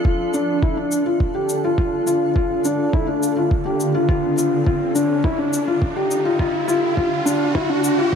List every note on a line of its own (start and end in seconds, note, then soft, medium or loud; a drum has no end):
0.00 8.15 D2 medium
0.00 8.15 D3 medium
0.00 1.68 C4 medium
0.00 8.15 D4 medium
0.00 8.15 A4 medium
0.00 riser medium
0.05 0.29 F4 medium
0.05 kick medium
0.09 4.18 F4 medium
0.34 0.57 D4 medium
0.34 shaker medium
0.63 0.75 E4 medium
0.63 kick medium
0.77 1.01 D4 medium
0.92 shaker medium
1.06 1.30 F4 medium
1.20 kick medium
1.34 1.58 G4 medium
1.49 shaker medium
1.64 1.76 F4 medium
1.78 2.02 F4 medium
1.78 kick medium
2.07 2.30 F4 medium
2.07 shaker medium
2.36 2.59 F4 medium
2.36 kick medium
2.65 2.88 D4 medium
2.65 shaker medium
2.93 3.05 E4 medium
2.93 kick loud
3.07 3.31 D4 medium
3.23 shaker medium
3.36 3.60 F4 medium
3.51 kick loud
3.65 3.89 G4 medium
3.80 shaker medium
3.94 4.06 F4 medium
4.01 8.15 G4 medium
4.09 4.32 F4 medium
4.09 kick medium
4.38 4.61 F4 medium
4.38 shaker medium
4.66 4.90 F4 medium
4.66 kick loud
4.95 5.19 D4 medium
4.95 shaker medium
5.24 5.36 E4 medium
5.24 kick loud
5.38 5.62 D4 medium
5.53 shaker medium
5.68 5.91 F4 medium
5.82 kick loud
5.96 6.20 G4 medium
6.11 shaker medium
6.25 6.37 F4 medium
6.39 6.63 F4 medium
6.39 kick medium
6.68 6.92 F4 medium
6.68 shaker medium
6.97 7.21 F4 medium
6.97 kick loud
7.25 7.49 D4 medium
7.25 shaker medium
7.55 7.67 E4 medium
7.55 kick loud
7.69 7.93 D4 medium
7.84 shaker medium
7.98 8.15 F4 medium